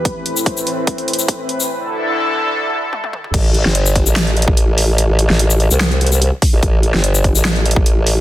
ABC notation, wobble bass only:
X:1
M:4/4
L:1/16
Q:"Swing 16ths" 1/4=146
K:Am
V:1 name="Wobble bass" clef=bass
z16 | z16 | A,,,3 G,,,4 A,,,4 A,,,4- A,,,- | A,,, A,,,2 A,,,4 C,,6 z2 A,,, |
A,,,3 G,,,4 A,,,4 A,,,4- A,,, |]